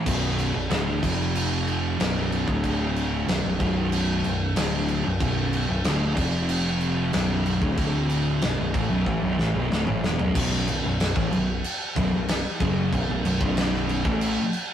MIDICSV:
0, 0, Header, 1, 4, 480
1, 0, Start_track
1, 0, Tempo, 643087
1, 48, Time_signature, 4, 2, 24, 8
1, 10999, End_track
2, 0, Start_track
2, 0, Title_t, "Distorted electric guitar"
2, 0, Program_c, 0, 30
2, 39, Note_on_c, 0, 35, 90
2, 43, Note_on_c, 0, 42, 97
2, 45, Note_on_c, 0, 47, 109
2, 396, Note_off_c, 0, 35, 0
2, 398, Note_off_c, 0, 42, 0
2, 399, Note_off_c, 0, 47, 0
2, 404, Note_on_c, 0, 35, 67
2, 406, Note_on_c, 0, 42, 74
2, 521, Note_off_c, 0, 35, 0
2, 522, Note_off_c, 0, 42, 0
2, 524, Note_on_c, 0, 38, 92
2, 525, Note_on_c, 0, 45, 93
2, 531, Note_on_c, 0, 50, 112
2, 758, Note_off_c, 0, 38, 0
2, 759, Note_off_c, 0, 45, 0
2, 762, Note_off_c, 0, 50, 0
2, 766, Note_on_c, 0, 41, 100
2, 771, Note_on_c, 0, 48, 96
2, 774, Note_on_c, 0, 53, 110
2, 1479, Note_off_c, 0, 41, 0
2, 1482, Note_off_c, 0, 48, 0
2, 1483, Note_off_c, 0, 53, 0
2, 1484, Note_on_c, 0, 35, 93
2, 1489, Note_on_c, 0, 42, 97
2, 1490, Note_on_c, 0, 47, 117
2, 1838, Note_off_c, 0, 35, 0
2, 1841, Note_off_c, 0, 42, 0
2, 1841, Note_off_c, 0, 47, 0
2, 1846, Note_on_c, 0, 38, 100
2, 1849, Note_on_c, 0, 50, 104
2, 1850, Note_on_c, 0, 45, 101
2, 2439, Note_off_c, 0, 38, 0
2, 2441, Note_off_c, 0, 45, 0
2, 2441, Note_off_c, 0, 50, 0
2, 2447, Note_on_c, 0, 35, 57
2, 2447, Note_on_c, 0, 42, 75
2, 2558, Note_off_c, 0, 35, 0
2, 2563, Note_off_c, 0, 42, 0
2, 2567, Note_on_c, 0, 35, 71
2, 2572, Note_on_c, 0, 42, 77
2, 2680, Note_off_c, 0, 35, 0
2, 2684, Note_off_c, 0, 42, 0
2, 2689, Note_on_c, 0, 35, 105
2, 2693, Note_on_c, 0, 42, 104
2, 2695, Note_on_c, 0, 47, 104
2, 3161, Note_off_c, 0, 35, 0
2, 3162, Note_off_c, 0, 42, 0
2, 3163, Note_off_c, 0, 47, 0
2, 3172, Note_on_c, 0, 35, 65
2, 3173, Note_on_c, 0, 42, 82
2, 3361, Note_off_c, 0, 35, 0
2, 3362, Note_off_c, 0, 42, 0
2, 3400, Note_on_c, 0, 38, 104
2, 3402, Note_on_c, 0, 45, 97
2, 3409, Note_on_c, 0, 50, 110
2, 3756, Note_off_c, 0, 38, 0
2, 3757, Note_off_c, 0, 45, 0
2, 3760, Note_off_c, 0, 50, 0
2, 3766, Note_on_c, 0, 35, 65
2, 3770, Note_on_c, 0, 42, 78
2, 3876, Note_off_c, 0, 35, 0
2, 3879, Note_off_c, 0, 42, 0
2, 3885, Note_on_c, 0, 35, 105
2, 3888, Note_on_c, 0, 42, 107
2, 3891, Note_on_c, 0, 47, 117
2, 4236, Note_off_c, 0, 35, 0
2, 4240, Note_off_c, 0, 42, 0
2, 4242, Note_off_c, 0, 47, 0
2, 4245, Note_on_c, 0, 35, 69
2, 4250, Note_on_c, 0, 42, 71
2, 4363, Note_off_c, 0, 35, 0
2, 4365, Note_off_c, 0, 42, 0
2, 4366, Note_on_c, 0, 38, 99
2, 4368, Note_on_c, 0, 45, 109
2, 4373, Note_on_c, 0, 50, 106
2, 4601, Note_off_c, 0, 38, 0
2, 4601, Note_on_c, 0, 41, 99
2, 4608, Note_off_c, 0, 45, 0
2, 4608, Note_on_c, 0, 48, 115
2, 4609, Note_off_c, 0, 50, 0
2, 4609, Note_on_c, 0, 53, 107
2, 5316, Note_off_c, 0, 41, 0
2, 5319, Note_on_c, 0, 35, 98
2, 5320, Note_off_c, 0, 48, 0
2, 5321, Note_off_c, 0, 53, 0
2, 5323, Note_on_c, 0, 42, 107
2, 5324, Note_on_c, 0, 47, 109
2, 5676, Note_off_c, 0, 35, 0
2, 5678, Note_off_c, 0, 42, 0
2, 5679, Note_off_c, 0, 47, 0
2, 5681, Note_on_c, 0, 38, 108
2, 5685, Note_on_c, 0, 45, 100
2, 5689, Note_on_c, 0, 50, 101
2, 6278, Note_off_c, 0, 38, 0
2, 6280, Note_off_c, 0, 45, 0
2, 6282, Note_off_c, 0, 50, 0
2, 6288, Note_on_c, 0, 35, 68
2, 6294, Note_on_c, 0, 42, 68
2, 6391, Note_off_c, 0, 35, 0
2, 6395, Note_off_c, 0, 42, 0
2, 6400, Note_on_c, 0, 35, 66
2, 6404, Note_on_c, 0, 42, 88
2, 6516, Note_off_c, 0, 35, 0
2, 6519, Note_on_c, 0, 45, 107
2, 6522, Note_off_c, 0, 42, 0
2, 6525, Note_on_c, 0, 52, 105
2, 6637, Note_off_c, 0, 45, 0
2, 6640, Note_off_c, 0, 52, 0
2, 6640, Note_on_c, 0, 35, 98
2, 6645, Note_on_c, 0, 42, 112
2, 6757, Note_off_c, 0, 35, 0
2, 6760, Note_off_c, 0, 42, 0
2, 6762, Note_on_c, 0, 45, 96
2, 6765, Note_on_c, 0, 52, 112
2, 6870, Note_off_c, 0, 45, 0
2, 6873, Note_on_c, 0, 35, 101
2, 6875, Note_off_c, 0, 52, 0
2, 6878, Note_on_c, 0, 42, 108
2, 6994, Note_off_c, 0, 35, 0
2, 6996, Note_off_c, 0, 42, 0
2, 7004, Note_on_c, 0, 45, 97
2, 7009, Note_on_c, 0, 52, 97
2, 7119, Note_off_c, 0, 45, 0
2, 7122, Note_off_c, 0, 52, 0
2, 7129, Note_on_c, 0, 35, 95
2, 7130, Note_on_c, 0, 42, 101
2, 7239, Note_off_c, 0, 35, 0
2, 7242, Note_on_c, 0, 38, 99
2, 7243, Note_off_c, 0, 42, 0
2, 7246, Note_on_c, 0, 45, 108
2, 7356, Note_off_c, 0, 45, 0
2, 7359, Note_off_c, 0, 38, 0
2, 7365, Note_on_c, 0, 45, 96
2, 7368, Note_on_c, 0, 52, 116
2, 7480, Note_off_c, 0, 45, 0
2, 7482, Note_off_c, 0, 52, 0
2, 7489, Note_on_c, 0, 40, 93
2, 7491, Note_on_c, 0, 47, 103
2, 7601, Note_off_c, 0, 40, 0
2, 7603, Note_off_c, 0, 47, 0
2, 7603, Note_on_c, 0, 35, 92
2, 7610, Note_on_c, 0, 42, 109
2, 7713, Note_off_c, 0, 35, 0
2, 7715, Note_off_c, 0, 42, 0
2, 7722, Note_on_c, 0, 35, 99
2, 7724, Note_on_c, 0, 42, 111
2, 7729, Note_on_c, 0, 47, 114
2, 7956, Note_off_c, 0, 35, 0
2, 7960, Note_off_c, 0, 42, 0
2, 7962, Note_off_c, 0, 47, 0
2, 7965, Note_on_c, 0, 35, 69
2, 7968, Note_on_c, 0, 42, 73
2, 8078, Note_off_c, 0, 35, 0
2, 8084, Note_off_c, 0, 42, 0
2, 8086, Note_on_c, 0, 35, 69
2, 8093, Note_on_c, 0, 42, 79
2, 8280, Note_off_c, 0, 35, 0
2, 8283, Note_off_c, 0, 42, 0
2, 8325, Note_on_c, 0, 45, 102
2, 8330, Note_on_c, 0, 52, 111
2, 8440, Note_off_c, 0, 45, 0
2, 8443, Note_off_c, 0, 52, 0
2, 8445, Note_on_c, 0, 35, 72
2, 8449, Note_on_c, 0, 42, 80
2, 8640, Note_off_c, 0, 35, 0
2, 8642, Note_off_c, 0, 42, 0
2, 8925, Note_on_c, 0, 35, 86
2, 8930, Note_on_c, 0, 42, 105
2, 9040, Note_off_c, 0, 35, 0
2, 9043, Note_off_c, 0, 42, 0
2, 9049, Note_on_c, 0, 35, 71
2, 9054, Note_on_c, 0, 42, 84
2, 9242, Note_off_c, 0, 35, 0
2, 9244, Note_off_c, 0, 42, 0
2, 9406, Note_on_c, 0, 42, 105
2, 9411, Note_on_c, 0, 49, 111
2, 9413, Note_on_c, 0, 54, 116
2, 9641, Note_off_c, 0, 42, 0
2, 9643, Note_off_c, 0, 49, 0
2, 9644, Note_off_c, 0, 54, 0
2, 9649, Note_on_c, 0, 35, 69
2, 9655, Note_on_c, 0, 42, 80
2, 9762, Note_off_c, 0, 35, 0
2, 9767, Note_off_c, 0, 42, 0
2, 9771, Note_on_c, 0, 35, 71
2, 9776, Note_on_c, 0, 42, 76
2, 9882, Note_off_c, 0, 35, 0
2, 9887, Note_off_c, 0, 42, 0
2, 9891, Note_on_c, 0, 35, 68
2, 9896, Note_on_c, 0, 42, 76
2, 9994, Note_off_c, 0, 35, 0
2, 9999, Note_off_c, 0, 42, 0
2, 10003, Note_on_c, 0, 35, 107
2, 10008, Note_on_c, 0, 42, 110
2, 10010, Note_on_c, 0, 47, 104
2, 10479, Note_off_c, 0, 35, 0
2, 10481, Note_off_c, 0, 42, 0
2, 10482, Note_off_c, 0, 47, 0
2, 10488, Note_on_c, 0, 45, 99
2, 10492, Note_on_c, 0, 52, 107
2, 10494, Note_on_c, 0, 57, 103
2, 10721, Note_off_c, 0, 45, 0
2, 10723, Note_off_c, 0, 52, 0
2, 10724, Note_off_c, 0, 57, 0
2, 10999, End_track
3, 0, Start_track
3, 0, Title_t, "Picked electric bass"
3, 0, Program_c, 1, 34
3, 47, Note_on_c, 1, 23, 103
3, 382, Note_off_c, 1, 23, 0
3, 401, Note_on_c, 1, 23, 87
3, 516, Note_off_c, 1, 23, 0
3, 521, Note_on_c, 1, 26, 102
3, 747, Note_off_c, 1, 26, 0
3, 767, Note_on_c, 1, 29, 103
3, 1457, Note_off_c, 1, 29, 0
3, 1481, Note_on_c, 1, 23, 89
3, 1819, Note_off_c, 1, 23, 0
3, 1847, Note_on_c, 1, 26, 99
3, 2417, Note_off_c, 1, 26, 0
3, 2441, Note_on_c, 1, 23, 76
3, 2555, Note_off_c, 1, 23, 0
3, 2566, Note_on_c, 1, 23, 79
3, 2678, Note_off_c, 1, 23, 0
3, 2687, Note_on_c, 1, 23, 99
3, 3137, Note_off_c, 1, 23, 0
3, 3164, Note_on_c, 1, 23, 84
3, 3389, Note_off_c, 1, 23, 0
3, 3404, Note_on_c, 1, 26, 101
3, 3740, Note_off_c, 1, 26, 0
3, 3768, Note_on_c, 1, 23, 85
3, 3879, Note_off_c, 1, 23, 0
3, 3884, Note_on_c, 1, 23, 98
3, 4220, Note_off_c, 1, 23, 0
3, 4243, Note_on_c, 1, 23, 92
3, 4356, Note_off_c, 1, 23, 0
3, 4362, Note_on_c, 1, 26, 100
3, 4588, Note_off_c, 1, 26, 0
3, 4603, Note_on_c, 1, 29, 98
3, 5296, Note_off_c, 1, 29, 0
3, 5324, Note_on_c, 1, 23, 100
3, 5661, Note_off_c, 1, 23, 0
3, 5686, Note_on_c, 1, 26, 97
3, 6258, Note_off_c, 1, 26, 0
3, 6286, Note_on_c, 1, 23, 74
3, 6399, Note_off_c, 1, 23, 0
3, 6409, Note_on_c, 1, 23, 72
3, 6519, Note_off_c, 1, 23, 0
3, 6523, Note_on_c, 1, 33, 95
3, 6637, Note_off_c, 1, 33, 0
3, 6647, Note_on_c, 1, 23, 102
3, 6759, Note_off_c, 1, 23, 0
3, 6766, Note_on_c, 1, 33, 102
3, 6879, Note_off_c, 1, 33, 0
3, 6888, Note_on_c, 1, 23, 99
3, 7000, Note_off_c, 1, 23, 0
3, 7007, Note_on_c, 1, 33, 94
3, 7120, Note_off_c, 1, 33, 0
3, 7128, Note_on_c, 1, 23, 100
3, 7240, Note_off_c, 1, 23, 0
3, 7248, Note_on_c, 1, 26, 99
3, 7360, Note_off_c, 1, 26, 0
3, 7367, Note_on_c, 1, 33, 92
3, 7480, Note_off_c, 1, 33, 0
3, 7487, Note_on_c, 1, 28, 101
3, 7600, Note_off_c, 1, 28, 0
3, 7611, Note_on_c, 1, 23, 90
3, 7722, Note_off_c, 1, 23, 0
3, 7728, Note_on_c, 1, 23, 96
3, 7952, Note_off_c, 1, 23, 0
3, 7970, Note_on_c, 1, 23, 80
3, 8082, Note_off_c, 1, 23, 0
3, 8092, Note_on_c, 1, 23, 91
3, 8315, Note_off_c, 1, 23, 0
3, 8329, Note_on_c, 1, 33, 98
3, 8441, Note_off_c, 1, 33, 0
3, 8445, Note_on_c, 1, 23, 78
3, 8671, Note_off_c, 1, 23, 0
3, 8927, Note_on_c, 1, 23, 108
3, 9040, Note_off_c, 1, 23, 0
3, 9056, Note_on_c, 1, 23, 85
3, 9276, Note_off_c, 1, 23, 0
3, 9407, Note_on_c, 1, 30, 92
3, 9631, Note_off_c, 1, 30, 0
3, 9648, Note_on_c, 1, 23, 92
3, 9760, Note_off_c, 1, 23, 0
3, 9771, Note_on_c, 1, 23, 85
3, 9882, Note_off_c, 1, 23, 0
3, 9889, Note_on_c, 1, 23, 83
3, 10001, Note_off_c, 1, 23, 0
3, 10006, Note_on_c, 1, 23, 102
3, 10458, Note_off_c, 1, 23, 0
3, 10488, Note_on_c, 1, 33, 99
3, 10712, Note_off_c, 1, 33, 0
3, 10999, End_track
4, 0, Start_track
4, 0, Title_t, "Drums"
4, 47, Note_on_c, 9, 36, 100
4, 47, Note_on_c, 9, 49, 109
4, 47, Note_on_c, 9, 57, 81
4, 121, Note_off_c, 9, 36, 0
4, 122, Note_off_c, 9, 49, 0
4, 122, Note_off_c, 9, 57, 0
4, 288, Note_on_c, 9, 57, 71
4, 362, Note_off_c, 9, 57, 0
4, 526, Note_on_c, 9, 57, 72
4, 534, Note_on_c, 9, 38, 110
4, 601, Note_off_c, 9, 57, 0
4, 608, Note_off_c, 9, 38, 0
4, 768, Note_on_c, 9, 36, 97
4, 772, Note_on_c, 9, 57, 94
4, 780, Note_on_c, 9, 38, 32
4, 843, Note_off_c, 9, 36, 0
4, 847, Note_off_c, 9, 57, 0
4, 855, Note_off_c, 9, 38, 0
4, 1011, Note_on_c, 9, 57, 87
4, 1085, Note_off_c, 9, 57, 0
4, 1251, Note_on_c, 9, 57, 55
4, 1326, Note_off_c, 9, 57, 0
4, 1492, Note_on_c, 9, 57, 78
4, 1499, Note_on_c, 9, 38, 113
4, 1567, Note_off_c, 9, 57, 0
4, 1574, Note_off_c, 9, 38, 0
4, 1733, Note_on_c, 9, 57, 61
4, 1807, Note_off_c, 9, 57, 0
4, 1848, Note_on_c, 9, 36, 108
4, 1923, Note_off_c, 9, 36, 0
4, 1969, Note_on_c, 9, 36, 90
4, 1972, Note_on_c, 9, 57, 78
4, 2043, Note_off_c, 9, 36, 0
4, 2046, Note_off_c, 9, 57, 0
4, 2211, Note_on_c, 9, 57, 61
4, 2286, Note_off_c, 9, 57, 0
4, 2451, Note_on_c, 9, 57, 77
4, 2458, Note_on_c, 9, 38, 107
4, 2526, Note_off_c, 9, 57, 0
4, 2533, Note_off_c, 9, 38, 0
4, 2687, Note_on_c, 9, 36, 97
4, 2690, Note_on_c, 9, 57, 58
4, 2762, Note_off_c, 9, 36, 0
4, 2765, Note_off_c, 9, 57, 0
4, 2927, Note_on_c, 9, 57, 91
4, 3001, Note_off_c, 9, 57, 0
4, 3166, Note_on_c, 9, 57, 68
4, 3240, Note_off_c, 9, 57, 0
4, 3404, Note_on_c, 9, 57, 94
4, 3412, Note_on_c, 9, 38, 118
4, 3479, Note_off_c, 9, 57, 0
4, 3487, Note_off_c, 9, 38, 0
4, 3645, Note_on_c, 9, 57, 66
4, 3720, Note_off_c, 9, 57, 0
4, 3885, Note_on_c, 9, 36, 107
4, 3885, Note_on_c, 9, 57, 85
4, 3960, Note_off_c, 9, 36, 0
4, 3960, Note_off_c, 9, 57, 0
4, 4126, Note_on_c, 9, 57, 72
4, 4201, Note_off_c, 9, 57, 0
4, 4362, Note_on_c, 9, 57, 86
4, 4369, Note_on_c, 9, 38, 114
4, 4436, Note_off_c, 9, 57, 0
4, 4444, Note_off_c, 9, 38, 0
4, 4604, Note_on_c, 9, 57, 89
4, 4605, Note_on_c, 9, 36, 109
4, 4612, Note_on_c, 9, 38, 35
4, 4679, Note_off_c, 9, 36, 0
4, 4679, Note_off_c, 9, 57, 0
4, 4686, Note_off_c, 9, 38, 0
4, 4842, Note_on_c, 9, 57, 89
4, 4917, Note_off_c, 9, 57, 0
4, 5081, Note_on_c, 9, 57, 59
4, 5156, Note_off_c, 9, 57, 0
4, 5323, Note_on_c, 9, 57, 82
4, 5330, Note_on_c, 9, 38, 110
4, 5397, Note_off_c, 9, 57, 0
4, 5405, Note_off_c, 9, 38, 0
4, 5566, Note_on_c, 9, 57, 58
4, 5641, Note_off_c, 9, 57, 0
4, 5685, Note_on_c, 9, 36, 106
4, 5760, Note_off_c, 9, 36, 0
4, 5803, Note_on_c, 9, 57, 80
4, 5805, Note_on_c, 9, 36, 102
4, 5878, Note_off_c, 9, 57, 0
4, 5879, Note_off_c, 9, 36, 0
4, 6043, Note_on_c, 9, 57, 68
4, 6118, Note_off_c, 9, 57, 0
4, 6281, Note_on_c, 9, 57, 73
4, 6288, Note_on_c, 9, 38, 115
4, 6356, Note_off_c, 9, 57, 0
4, 6363, Note_off_c, 9, 38, 0
4, 6525, Note_on_c, 9, 36, 103
4, 6525, Note_on_c, 9, 57, 61
4, 6600, Note_off_c, 9, 36, 0
4, 6600, Note_off_c, 9, 57, 0
4, 6766, Note_on_c, 9, 36, 69
4, 6840, Note_off_c, 9, 36, 0
4, 7012, Note_on_c, 9, 38, 74
4, 7087, Note_off_c, 9, 38, 0
4, 7254, Note_on_c, 9, 38, 93
4, 7329, Note_off_c, 9, 38, 0
4, 7367, Note_on_c, 9, 45, 91
4, 7441, Note_off_c, 9, 45, 0
4, 7496, Note_on_c, 9, 38, 113
4, 7570, Note_off_c, 9, 38, 0
4, 7609, Note_on_c, 9, 43, 91
4, 7683, Note_off_c, 9, 43, 0
4, 7728, Note_on_c, 9, 36, 110
4, 7730, Note_on_c, 9, 49, 120
4, 7730, Note_on_c, 9, 57, 88
4, 7802, Note_off_c, 9, 36, 0
4, 7805, Note_off_c, 9, 49, 0
4, 7805, Note_off_c, 9, 57, 0
4, 7969, Note_on_c, 9, 57, 69
4, 8044, Note_off_c, 9, 57, 0
4, 8211, Note_on_c, 9, 57, 90
4, 8218, Note_on_c, 9, 38, 112
4, 8286, Note_off_c, 9, 57, 0
4, 8293, Note_off_c, 9, 38, 0
4, 8329, Note_on_c, 9, 36, 111
4, 8340, Note_on_c, 9, 38, 34
4, 8403, Note_off_c, 9, 36, 0
4, 8415, Note_off_c, 9, 38, 0
4, 8453, Note_on_c, 9, 57, 61
4, 8527, Note_off_c, 9, 57, 0
4, 8690, Note_on_c, 9, 57, 84
4, 8765, Note_off_c, 9, 57, 0
4, 8929, Note_on_c, 9, 36, 107
4, 8933, Note_on_c, 9, 57, 61
4, 9004, Note_off_c, 9, 36, 0
4, 9007, Note_off_c, 9, 57, 0
4, 9169, Note_on_c, 9, 57, 90
4, 9176, Note_on_c, 9, 38, 114
4, 9244, Note_off_c, 9, 57, 0
4, 9251, Note_off_c, 9, 38, 0
4, 9408, Note_on_c, 9, 36, 116
4, 9410, Note_on_c, 9, 57, 64
4, 9482, Note_off_c, 9, 36, 0
4, 9485, Note_off_c, 9, 57, 0
4, 9648, Note_on_c, 9, 36, 83
4, 9650, Note_on_c, 9, 57, 70
4, 9722, Note_off_c, 9, 36, 0
4, 9725, Note_off_c, 9, 57, 0
4, 9890, Note_on_c, 9, 57, 70
4, 9964, Note_off_c, 9, 57, 0
4, 10007, Note_on_c, 9, 36, 109
4, 10082, Note_off_c, 9, 36, 0
4, 10128, Note_on_c, 9, 57, 88
4, 10135, Note_on_c, 9, 38, 103
4, 10202, Note_off_c, 9, 57, 0
4, 10210, Note_off_c, 9, 38, 0
4, 10257, Note_on_c, 9, 38, 34
4, 10332, Note_off_c, 9, 38, 0
4, 10369, Note_on_c, 9, 57, 64
4, 10443, Note_off_c, 9, 57, 0
4, 10487, Note_on_c, 9, 36, 105
4, 10562, Note_off_c, 9, 36, 0
4, 10608, Note_on_c, 9, 57, 94
4, 10682, Note_off_c, 9, 57, 0
4, 10845, Note_on_c, 9, 57, 65
4, 10920, Note_off_c, 9, 57, 0
4, 10999, End_track
0, 0, End_of_file